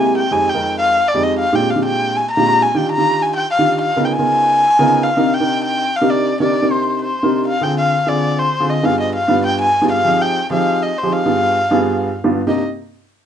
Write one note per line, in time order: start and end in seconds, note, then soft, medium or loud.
0.00 0.20 C3 medium
0.00 0.20 G#3 medium
0.00 0.20 A#3 medium
0.00 0.20 E4 medium
0.00 0.20 G4 medium
0.00 0.17 G#5 medium
0.18 0.34 G5 medium
0.31 0.47 F2 medium
0.31 0.47 G#3 medium
0.31 0.47 C4 medium
0.31 0.48 D#4 medium
0.31 0.47 G4 medium
0.31 0.50 G#5 loud
0.49 0.78 G5 medium
0.54 0.97 F2 medium
0.54 0.97 G#3 medium
0.54 0.97 C4 medium
0.54 0.97 D#4 medium
0.54 0.97 A#4 medium
0.79 1.10 F5 loud
1.08 1.25 D5 medium
1.14 1.41 F2 medium
1.14 1.41 G#3 medium
1.14 1.41 C4 medium
1.14 1.41 D#4 medium
1.14 1.41 G4 medium
1.23 1.38 D#5 medium
1.39 1.57 F5 medium
1.53 1.69 A#2 medium
1.53 1.69 G#3 medium
1.53 1.69 C4 medium
1.53 1.69 D4 medium
1.53 1.69 F4 medium
1.53 1.69 G4 medium
1.53 1.72 G5 medium
1.70 1.85 F5 medium
1.75 2.18 A#2 medium
1.75 2.18 G#3 medium
1.75 2.18 C4 medium
1.75 2.18 D4 medium
1.75 2.18 F4 medium
1.75 2.18 G4 medium
1.85 2.18 G5 medium
2.16 2.30 G#5 medium
2.31 2.64 A#5 loud
2.37 2.63 A#2 medium
2.37 2.64 G#3 medium
2.37 2.64 C4 medium
2.37 2.64 D4 medium
2.37 2.64 F4 medium
2.37 2.64 G4 medium
2.62 2.79 G#5 loud
2.75 2.91 D#3 medium
2.75 2.91 D4 medium
2.75 2.91 F4 medium
2.75 2.91 G4 medium
2.75 2.91 G5 medium
2.92 3.23 A#5 loud
2.97 3.40 D#3 medium
2.97 3.40 D4 medium
2.97 3.40 F4 medium
2.97 3.40 G4 medium
3.22 3.35 G#5 medium
3.36 3.50 G5 medium
3.51 3.79 F5 loud
3.59 3.85 D#3 medium
3.59 3.85 D4 medium
3.59 3.85 F4 medium
3.59 3.85 G4 medium
3.81 4.07 F5 loud
3.96 4.12 C#3 medium
3.96 4.12 B3 medium
3.96 4.13 D#4 medium
3.96 4.12 F4 medium
3.96 4.12 G#4 medium
3.96 4.12 A#4 medium
4.05 4.14 G5 medium
4.13 5.05 G#5 loud
4.19 4.62 C#3 medium
4.19 4.62 B3 medium
4.19 4.62 D#4 medium
4.19 4.62 F4 medium
4.19 4.62 G#4 medium
4.19 4.62 A#4 medium
4.79 5.06 C#3 medium
4.79 5.06 B3 medium
4.79 5.06 D#4 medium
4.79 5.06 F4 medium
4.79 5.06 G#4 medium
4.79 5.06 A#4 loud
5.03 5.35 F5 medium
5.17 5.33 C3 medium
5.17 5.34 D4 medium
5.17 5.33 D#4 medium
5.17 5.34 G4 medium
5.17 5.34 A#4 medium
5.34 5.64 G5 loud
5.40 5.83 C3 medium
5.40 5.83 D4 medium
5.40 5.83 D#4 medium
5.40 5.83 G4 medium
5.40 5.83 A#4 medium
5.64 5.97 G5 loud
5.96 6.12 F5 medium
6.01 6.28 C3 medium
6.01 6.28 D4 medium
6.01 6.28 D#4 medium
6.01 6.28 G4 medium
6.01 6.28 A#4 medium
6.10 6.40 D5 medium
6.40 6.56 C3 medium
6.40 6.56 D4 medium
6.40 6.56 D#4 medium
6.40 6.56 G4 medium
6.40 6.56 A#4 medium
6.40 6.73 D5 medium
6.62 7.05 C3 medium
6.62 7.05 D4 medium
6.62 7.05 D#4 medium
6.62 7.05 G4 medium
6.62 7.05 A#4 medium
6.72 7.01 C5 medium
7.02 7.43 C5 medium
7.23 7.50 C3 medium
7.23 7.50 D4 medium
7.23 7.50 D#4 medium
7.23 7.50 G4 medium
7.23 7.50 A#4 medium
7.48 7.64 F5 medium
7.61 7.93 D3 medium
7.61 7.93 C4 medium
7.61 7.93 F4 medium
7.61 7.93 G#4 medium
7.61 7.77 G5 medium
7.78 8.10 F5 loud
8.06 8.44 D3 medium
8.06 8.44 C4 medium
8.06 8.44 F4 medium
8.06 8.44 G#4 medium
8.06 8.41 D5 medium
8.39 8.71 C5 medium
8.60 8.76 D3 medium
8.60 8.76 C4 medium
8.60 8.76 F4 medium
8.60 8.76 G#4 medium
8.70 8.86 D#5 medium
8.83 9.15 G2 medium
8.83 9.15 B3 medium
8.83 9.15 D4 medium
8.83 9.15 F4 medium
8.83 9.15 G#4 medium
8.83 8.99 F5 loud
9.00 9.13 D#5 medium
9.15 9.42 F5 medium
9.28 9.65 G2 medium
9.28 9.65 B3 medium
9.28 9.65 D4 medium
9.28 9.65 F4 medium
9.28 9.65 B4 medium
9.46 9.59 G5 medium
9.62 9.88 G#5 loud
9.81 9.97 G2 medium
9.81 9.97 B3 medium
9.81 9.97 D4 medium
9.81 9.97 F4 medium
9.81 9.97 G#4 medium
9.92 10.23 F5 loud
10.04 10.36 F3 medium
10.04 10.36 C4 medium
10.04 10.36 D#4 medium
10.04 10.36 G4 medium
10.04 10.36 G#4 medium
10.21 10.51 G5 loud
10.50 10.87 F3 medium
10.50 10.87 C4 medium
10.50 10.87 D#4 medium
10.50 10.87 G4 medium
10.50 10.87 G#4 medium
10.50 10.84 F5 loud
10.83 10.99 D#5 medium
10.98 11.14 C5 medium
11.03 11.19 F3 medium
11.03 11.19 C4 medium
11.03 11.19 D#4 medium
11.03 11.19 G4 medium
11.03 11.19 G#4 medium
11.13 12.18 F5 loud
11.26 11.58 G2 medium
11.26 11.58 B3 medium
11.26 11.58 D4 medium
11.26 11.58 F4 medium
11.26 11.58 G#4 medium
11.71 12.08 G2 medium
11.71 12.08 B3 medium
11.71 12.08 D4 medium
11.71 12.08 F4 medium
11.71 12.08 G#4 loud
12.24 12.40 G2 medium
12.24 12.40 B3 medium
12.24 12.40 D4 medium
12.24 12.40 F4 medium
12.24 12.40 G4 medium
12.47 12.61 C3 medium
12.47 12.61 A#3 medium
12.47 12.61 D4 medium
12.47 12.61 D#4 medium
12.47 12.61 G4 medium
12.47 12.62 D#5 medium